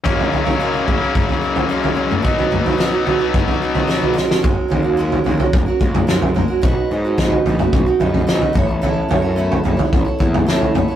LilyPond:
<<
  \new Staff \with { instrumentName = "Steel-string acoustic guitar" } { \time 4/4 \key fis \mixolydian \tempo 4 = 109 <fis gis cis' gis' ais'>8 <gis cis' gis' ais'>16 <cis' gis' ais'>16 <fis gis cis' gis' ais'>16 <cis' gis' ais'>8 <cis' gis' ais'>8. <gis cis' gis' ais'>8 <fis gis cis' gis' ais'>16 <cis' gis' ais'>16 <gis cis' gis' ais'>16 <cis' gis' ais'>16 | <b, fis dis' fis' b'>8 <dis' fis' b'>16 <dis' fis' b'>16 <b, fis dis' fis' b'>16 <dis' fis' b'>8 <dis' fis' b'>8. <dis' fis' b'>8 <b, fis ais dis' fis' b'>16 <ais dis' fis' b'>16 <fis gis cis' fis' ais'>16 <cis' fis' ais'>16 | <fis gis cis' fis' ais'>8 <gis cis' fis' ais'>16 <cis' fis' ais'>16 <fis gis cis' fis' ais'>8 <gis cis' fis' ais'>16 <cis' fis' ais'>8 <cis' fis' ais'>16 <gis cis' fis' ais'>8 <fis gis cis' fis' ais'>8 <gis cis' fis' ais'>16 <cis' fis' ais'>16 | <b, fis dis' fis' b'>8 <dis' fis' b'>16 <ais dis' fis'>16 <b, fis dis' fis' b'>8 <dis' fis' b'>16 <ais dis' fis'>8 <ais dis' fis'>16 <dis' fis' b'>8 <b, fis ais dis' fis' b'>8 <a b e' a' cis''>16 <e' a' cis''>16 |
<a b e' a' cis''>8 <b e' a' cis''>16 <e' a' cis''>16 <a b e' a' cis''>8 <b e' a' cis''>16 <e' a' cis''>8 <e' a' cis''>16 <b e' a' cis''>8 <a b e' a' cis''>8 <b e' a' cis''>16 <e' a' cis''>16 | }
  \new Staff \with { instrumentName = "Distorted electric guitar" } { \clef bass \time 4/4 \key fis \mixolydian <fis, cis fis ais cis'>4. <fis, cis fis ais cis'>2~ <fis, cis fis ais cis'>8 | <b, fis b dis'>4. <b, fis b dis'>2 r8 | r1 | r1 |
r1 | }
  \new Staff \with { instrumentName = "Picked electric bass" } { \clef bass \time 4/4 \key fis \mixolydian r1 | r1 | fis,,16 r16 dis,4 dis,16 r16 fis,,16 r16 cis,8 fis,8 r8 | b,,16 r16 gis,4 ais,,16 r16 b,,16 r16 fis,8 ais,,16 r16 a,,8~ |
a,,8 fis,4 fis,,16 r16 a,,16 r16 e,8 a,8 r8 | }
  \new DrumStaff \with { instrumentName = "Drums" } \drummode { \time 4/4 <bd tomfh>16 tomfh16 tomfh16 tomfh16 r8 <bd tomfh>8 <bd tomfh toml>16 tomfh8 tomfh16 r16 tomfh8 toml16 | <bd tomfh>16 tomfh16 <tomfh toml>16 tomfh16 sn8 tomfh8 <bd tomfh toml>16 tomfh8 tomfh16 sn16 tomfh16 sn16 sn16 | <bd tomfh>8 tomfh8 r16 tomfh16 tomfh16 tomfh16 <bd tomfh>8 bd16 <tomfh toml>16 sn16 tomfh16 <tomfh toml>8 | <bd tomfh>4 <bd sn>16 tomfh16 tomfh16 <tomfh toml>16 <bd tomfh>8 tomfh16 tomfh16 sn16 tomfh16 <bd tomfh toml>8 |
tomfh8 tomfh8 r16 tomfh16 tomfh16 tomfh16 <bd tomfh>8 bd16 <tomfh toml>16 sn16 tomfh16 <tomfh toml>8 | }
>>